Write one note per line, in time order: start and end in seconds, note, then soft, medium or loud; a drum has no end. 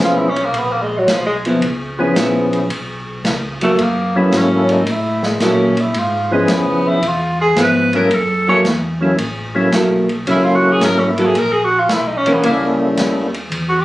0.00 0.51 B1 medium
0.00 0.29 F3 medium
0.00 0.30 F3 soft
0.00 0.29 B3 medium
0.00 0.30 B3 soft
0.00 0.29 C#4 medium
0.00 0.30 E4 medium
0.00 0.30 G#4 medium
0.04 0.19 F4 medium
0.17 0.31 E4 medium
0.29 0.46 C#4 medium
0.36 ride soft
0.44 0.59 A#3 medium
0.53 1.06 A#1 medium
0.53 ride soft
0.58 0.73 B3 medium
0.72 0.84 A#3 medium
0.82 0.99 G#3 medium
0.98 1.14 F#3 medium
1.07 1.60 B1 medium
1.07 snare medium
1.07 hi-hat pedal medium
1.07 ride medium
1.13 1.26 F3 medium
1.26 1.37 G#3 medium
1.45 1.61 F3 medium
1.45 1.61 B3 medium
1.45 1.61 E4 medium
1.45 ride soft
1.61 2.14 C#2 medium
1.61 ride medium
1.99 2.67 F3 medium
1.99 2.67 B3 medium
1.99 2.67 C#4 medium
1.99 2.67 E4 medium
1.99 2.68 G#4 medium
2.16 2.68 A#1 medium
2.16 2.50 F3 medium
2.16 2.50 B3 medium
2.16 2.50 E4 medium
2.16 snare medium
2.16 hi-hat pedal medium
2.16 ride medium
2.53 ride soft
2.70 3.23 B1 medium
2.70 ride medium
3.24 3.77 C#2 medium
3.24 snare medium
3.24 hi-hat pedal soft
3.24 ride medium
3.61 3.77 F#3 medium
3.61 3.84 A3 medium
3.61 3.77 A#3 medium
3.61 3.78 E4 medium
3.61 3.78 A4 medium
3.61 ride soft
3.78 4.31 F#2 medium
3.78 ride medium
3.82 4.19 A#3 medium
4.16 4.83 F#3 medium
4.16 4.83 A#3 medium
4.16 4.39 B3 medium
4.16 4.84 C#4 medium
4.16 4.84 E4 medium
4.16 4.84 A4 medium
4.32 4.85 G#2 medium
4.32 snare medium
4.32 hi-hat pedal medium
4.32 ride medium
4.37 4.74 C#4 medium
4.69 4.92 D#4 medium
4.69 ride soft
4.86 5.39 A2 medium
4.86 ride medium
4.91 5.28 E4 medium
5.23 5.47 G#3 medium
5.23 snare medium
5.40 5.93 A#2 medium
5.40 5.74 F#3 medium
5.40 5.74 A#3 medium
5.40 5.74 E4 medium
5.40 5.74 A4 medium
5.40 snare medium
5.40 hi-hat pedal medium
5.40 ride medium
5.45 5.82 C#4 medium
5.77 6.00 E4 medium
5.77 ride soft
5.94 6.47 G#2 medium
5.94 ride medium
5.99 6.33 F4 medium
6.31 6.99 F3 medium
6.31 6.55 G#3 medium
6.31 7.00 B3 medium
6.31 7.00 C#4 medium
6.31 7.00 E4 medium
6.31 7.00 G#4 medium
6.48 6.66 F2 medium
6.48 snare medium
6.48 hi-hat pedal soft
6.48 ride medium
6.54 6.89 B3 medium
6.65 6.84 C#2 medium
6.84 7.01 B1 medium
6.88 7.09 E4 medium
7.01 7.54 E2 medium
7.01 ride medium
7.08 7.41 F4 medium
7.41 7.63 G#4 medium
7.56 8.09 G#2 medium
7.56 7.90 F3 medium
7.56 7.90 B3 medium
7.56 7.90 E4 medium
7.56 snare medium
7.56 hi-hat pedal soft
7.56 ride medium
7.61 7.95 B4 loud
7.93 8.09 F#3 medium
7.93 8.10 A#3 medium
7.93 8.10 C#4 medium
7.93 8.10 E4 medium
7.93 8.10 A4 medium
7.93 8.17 A#4 medium
7.93 ride soft
8.09 8.63 F#2 medium
8.09 ride medium
8.15 8.49 A4 medium
8.48 8.63 F#3 medium
8.48 8.64 A#3 medium
8.48 8.64 E4 medium
8.48 8.64 A4 medium
8.48 8.59 C#5 loud
8.63 9.17 E2 medium
8.63 snare medium
8.63 hi-hat pedal soft
8.63 ride medium
9.01 9.17 F#3 medium
9.01 9.17 A#3 medium
9.01 9.17 C#4 medium
9.01 9.18 E4 medium
9.01 9.18 A4 medium
9.18 9.71 A1 medium
9.18 ride medium
9.55 9.71 F#3 medium
9.55 9.71 A#3 medium
9.55 9.71 C#4 medium
9.55 9.71 E4 medium
9.55 9.72 A4 medium
9.72 10.25 B1 medium
9.72 10.06 F#3 soft
9.72 10.06 A#3 soft
9.72 10.07 E4 medium
9.72 10.07 A4 medium
9.72 snare medium
9.72 hi-hat pedal medium
9.72 ride medium
10.09 ride soft
10.26 10.79 C#2 medium
10.26 11.10 F#3 medium
10.26 11.11 A#3 medium
10.26 11.11 C#4 medium
10.26 11.11 E4 medium
10.26 11.12 A4 medium
10.26 ride medium
10.30 10.46 E4 medium
10.44 10.57 F4 medium
10.56 10.73 F#4 medium
10.72 10.86 G#4 medium
10.80 11.33 G#1 medium
10.80 snare medium
10.80 hi-hat pedal medium
10.80 ride medium
10.85 11.01 A#4 loud
10.99 11.11 C#4 medium
11.10 11.27 E4 medium
11.18 11.34 F#3 medium
11.18 11.34 A#3 medium
11.18 11.34 E4 medium
11.18 11.34 A4 medium
11.18 ride soft
11.25 11.40 G#4 medium
11.35 11.88 A#1 medium
11.35 ride medium
11.39 11.54 A#4 loud
11.52 11.66 G#4 medium
11.65 11.81 F#4 loud
11.79 11.95 F4 medium
11.88 12.23 B1 medium
11.88 snare medium
11.88 hi-hat pedal medium
11.88 ride medium
11.93 12.08 E4 medium
12.07 12.19 D#4 medium
12.17 12.35 C#4 medium
12.26 12.35 B1 soft
12.26 12.42 E3 medium
12.26 12.42 A#3 medium
12.26 12.43 C#4 medium
12.26 ride soft
12.33 12.43 B3 medium
12.43 12.96 C#2 medium
12.43 13.27 G3 medium
12.43 13.28 A#3 medium
12.43 12.67 A#3 medium
12.43 13.28 C#4 medium
12.43 13.28 E4 medium
12.43 13.28 A4 medium
12.43 ride medium
12.97 13.50 D#2 medium
12.97 snare medium
12.97 hi-hat pedal medium
12.97 ride medium
13.34 ride soft
13.51 13.85 E2 medium
13.51 ride medium
13.69 13.82 F#4 medium
13.80 13.85 G4 loud